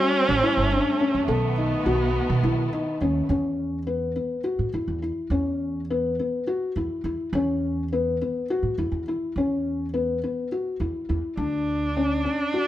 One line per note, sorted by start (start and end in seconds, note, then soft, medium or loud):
0.00 1.24 G3 medium
0.00 3.27 A3 medium
0.00 1.27 C#4 medium
0.00 1.27 C#4 loud
0.00 0.32 F#4 medium
0.29 0.40 A1 medium
0.43 0.66 E4 medium
0.57 0.79 G1 medium
0.72 0.95 D4 medium
1.01 1.24 C#4 medium
1.15 1.25 F#2 medium
1.28 1.72 B1 medium
1.28 3.29 D#3 medium
1.28 2.97 B3 medium
1.28 3.29 B3 medium
1.28 1.52 A4 medium
1.58 1.81 D#4 medium
1.86 2.19 B1 medium
1.86 2.34 F#4 medium
2.30 2.41 B2 medium
2.43 2.65 B1 medium
2.43 2.68 E4 medium
2.73 2.97 D#4 medium
3.01 3.23 D#2 medium
3.01 3.25 C#4 medium
3.29 4.18 E2 medium
3.29 3.78 C#4 medium
3.87 4.11 B3 medium
4.16 4.40 B3 medium
4.44 4.68 F#4 medium
4.59 4.70 A2 medium
4.74 4.85 E2 medium
4.74 4.98 E4 medium
4.88 5.10 E2 medium
5.02 5.27 E4 medium
5.30 6.19 E2 medium
5.30 5.79 C#4 medium
5.90 6.14 B3 medium
6.19 6.43 B3 medium
6.47 6.71 F#4 medium
6.76 6.87 E2 medium
6.76 7.01 E4 medium
7.04 7.16 E2 medium
7.04 7.29 E4 medium
7.33 8.22 E2 loud
7.33 7.82 C#4 medium
7.93 8.16 B3 medium
8.21 8.45 B3 medium
8.50 8.74 F#4 medium
8.63 8.74 A2 medium
8.78 8.89 E2 medium
8.78 9.02 E4 medium
8.92 9.14 E2 medium
9.08 9.32 E4 medium
9.36 10.24 E2 medium
9.36 9.85 C#4 medium
9.94 10.18 B3 medium
10.24 10.47 B3 medium
10.52 10.76 F#4 medium
10.80 10.91 E2 medium
10.80 11.04 E4 medium
11.09 11.21 E2 medium
11.09 11.33 E4 medium
11.37 12.26 D2 medium
11.37 11.86 D4 medium
11.37 12.67 D4 medium
11.97 12.20 C#4 medium
12.25 12.48 C#4 medium
12.54 12.67 F#4 medium